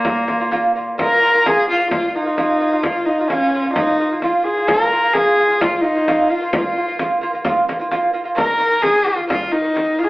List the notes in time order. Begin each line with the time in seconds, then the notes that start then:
Already playing: A#2 A#3
0.04 A#3 F4, frame drum
0.28 A#3 F4, frame drum
0.40 A#3 F4
0.51 A#3 F4, frame drum
0.75 A#3 F4, frame drum
0.98 A#3 F4 A#4, frame drum
1.21 A#3 F4
1.32 A#3 F4
1.44 A#3 F4 G#4, frame drum
1.68 A#3 F4, frame drum
1.80 A#3 F4, frame drum
1.90 A#3 F4, frame drum
2.08 F4
2.14 A#3 D#4 F4
2.25 A#3 F4, frame drum
2.38 A#3 F4, frame drum
2.60 A#3 F4
2.72 A#3 F4
2.83 A#3 F4, frame drum
3.05 A#3 D#4 F4
3.19 A#3 F4
3.28 A#3 C#4 F4, frame drum
3.54 A#3 F4, frame drum
3.65 A#3 F4, frame drum
3.70 D#4 F4
3.76 A#3 F4, frame drum
4.00 A#3 F4
4.11 A#3 F4, frame drum
4.22 A#3 F4, frame drum
4.43 A#3 F4 G#4
4.57 A#3 F4
4.68 A#3 F4 A#4, frame drum
4.91 A#3 F4
5.03 A#3 F4
5.13 A#3 F4 G#4, frame drum
5.39 A#3 F4, frame drum
5.49 A#3 F4, frame drum
5.60 A#3 F4, frame drum
5.76 F4
5.81 A#3 D#4 F4
5.95 A#3 F4, frame drum
6.08 A#3 F4, frame drum
6.30 A#3 F4
6.41 A#3 F4
6.53 A#3 F4, frame drum
6.77 A#3 F4
6.88 A#3 F4
6.99 A#3 F4, frame drum
7.21 A#3 F4, frame drum
7.33 A#3 F4, frame drum
7.44 A#3 F4, frame drum
7.68 A#3 F4, frame drum
7.79 A#3 F4, frame drum
7.91 A#3 F4, frame drum
8.13 A#3 F4
8.24 A#3 F4
8.35 D#3 A#3 A#4, frame drum
8.58 D#3 A#3
8.70 D#3 A#3
8.81 D#3 A#3 G#4, frame drum
9.05 D#3 A#3 F4, frame drum
9.17 D#3 A#3, frame drum
9.27 D#3 A#3 F4, frame drum
9.52 D#3 A#3 D#4
9.63 D#3 A#3, frame drum
9.74 D#3 A#3, frame drum
9.98 D#3 A#3 F4
10.04 G#4